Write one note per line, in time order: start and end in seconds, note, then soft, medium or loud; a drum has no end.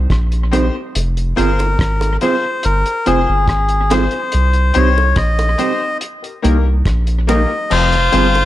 0.10 0.70 A#1 loud
0.10 kick loud
0.10 cross-stick medium
0.10 closed hi-hat medium
0.32 closed hi-hat soft
0.52 0.73 C4 medium
0.52 0.65 C4 medium
0.52 0.73 D#4 medium
0.52 0.65 D#4 medium
0.52 0.73 G4 medium
0.52 0.65 G4 medium
0.52 0.73 C5 medium
0.52 0.66 C5 medium
0.52 closed hi-hat medium
0.52 high bongo medium
0.52 low bongo medium
0.75 muted clean electric guitar stroke soft
0.95 1.33 F1 loud
0.95 closed hi-hat medium
1.17 closed hi-hat soft
1.36 1.76 G1 medium
1.36 1.57 C4 medium
1.36 1.49 C4 medium
1.36 1.57 F4 medium
1.36 1.50 F4 medium
1.36 1.58 G#4 medium
1.36 1.50 G#4 medium
1.36 2.17 A#4 medium
1.36 1.58 C5 medium
1.36 1.50 C5 medium
1.36 closed hi-hat medium
1.59 closed hi-hat soft
1.59 high bongo medium
1.79 2.18 G#1 medium
1.79 kick loud
1.79 cross-stick loud
1.79 closed hi-hat medium
2.01 closed hi-hat medium
2.01 high bongo medium
2.21 2.42 C4 medium
2.21 2.34 C4 medium
2.21 2.42 F4 medium
2.21 2.35 F4 medium
2.21 2.43 G#4 medium
2.21 2.34 G#4 medium
2.21 2.65 C5 medium
2.21 2.43 C5 medium
2.21 2.35 C5 medium
2.21 closed hi-hat medium
2.21 low bongo medium
2.63 2.84 G1 loud
2.63 3.07 A#4 loud
2.63 closed hi-hat medium
2.86 2.94 G#4 soft
2.86 2.94 C5 soft
2.86 closed hi-hat soft
3.06 3.26 F1 medium
3.06 3.27 C4 medium
3.06 3.19 C4 medium
3.06 3.27 F4 medium
3.06 3.19 F4 loud
3.06 3.93 G#4 loud
3.06 3.19 G#4 loud
3.06 3.27 G#4 medium
3.06 3.27 C5 medium
3.06 3.19 C5 loud
3.06 closed hi-hat medium
3.06 high bongo soft
3.29 3.47 G1 medium
3.29 muted clean electric guitar stroke soft
3.48 4.08 G#1 medium
3.48 kick medium
3.48 cross-stick medium
3.48 closed hi-hat medium
3.69 closed hi-hat medium
3.90 4.11 C4 medium
3.90 4.03 C4 medium
3.90 4.11 F4 medium
3.90 4.03 F4 medium
3.90 4.12 G#4 medium
3.90 4.04 G#4 medium
3.90 4.12 C5 medium
3.90 4.78 C5 loud
3.90 4.04 C5 medium
3.90 cross-stick medium
3.90 closed hi-hat medium
3.90 high bongo medium
3.90 low bongo medium
4.11 muted clean electric guitar stroke soft
4.11 closed hi-hat soft
4.32 4.72 C2 loud
4.32 closed hi-hat medium
4.53 closed hi-hat soft
4.74 5.14 C2 medium
4.74 4.95 C4 medium
4.74 4.88 C4 medium
4.74 4.95 D#4 medium
4.74 4.88 D#4 medium
4.74 4.95 G4 medium
4.74 4.88 G4 medium
4.74 4.96 C5 loud
4.74 4.88 C5 medium
4.74 5.19 C#5 loud
4.74 closed hi-hat medium
4.98 high bongo medium
5.16 5.55 A#1 medium
5.16 5.98 D#5 loud
5.16 kick loud
5.16 cross-stick loud
5.16 closed hi-hat medium
5.39 closed hi-hat soft
5.39 high bongo medium
5.58 5.79 C4 medium
5.58 5.72 C4 medium
5.58 5.80 D#4 medium
5.58 5.72 D#4 medium
5.58 5.80 G4 medium
5.58 5.72 G4 medium
5.58 5.80 C5 medium
5.58 5.72 C5 medium
5.58 closed hi-hat medium
5.58 low bongo soft
6.01 closed hi-hat medium
6.22 6.31 G4 soft
6.22 6.31 A#4 soft
6.22 closed hi-hat soft
6.42 6.83 C2 medium
6.42 6.64 A#3 medium
6.42 6.56 A#3 medium
6.42 6.64 D#4 medium
6.42 6.56 D#4 medium
6.42 6.64 G4 medium
6.42 6.57 G4 medium
6.42 6.64 A#4 medium
6.42 6.57 A#4 medium
6.42 closed hi-hat medium
6.42 high bongo soft
6.66 muted clean electric guitar stroke soft
6.85 7.46 A#1 loud
6.85 kick loud
6.85 cross-stick medium
6.85 closed hi-hat medium
7.07 closed hi-hat soft
7.27 7.49 A#3 medium
7.27 7.41 A#3 medium
7.27 7.49 D#4 medium
7.27 7.41 D#4 medium
7.27 7.49 G4 medium
7.27 7.41 G4 medium
7.27 7.49 A#4 medium
7.27 7.41 A#4 medium
7.27 7.72 D#5 medium
7.27 closed hi-hat medium
7.27 high bongo medium
7.27 low bongo medium
7.51 muted clean electric guitar stroke soft
7.70 8.09 F1 loud
7.70 7.96 F2 loud
7.70 8.45 F4 loud
7.70 8.45 C5 loud
7.70 crash loud
7.92 closed hi-hat medium
8.12 8.45 G1 loud
8.12 8.38 G2 medium
8.12 8.33 C4 medium
8.12 8.26 C4 medium
8.12 8.33 F4 medium
8.12 8.26 F4 medium
8.12 8.33 G#4 medium
8.12 8.26 G#4 medium
8.12 8.34 C5 loud
8.12 8.26 C5 medium
8.12 closed hi-hat medium
8.12 high bongo soft
8.34 closed hi-hat soft
8.34 high bongo medium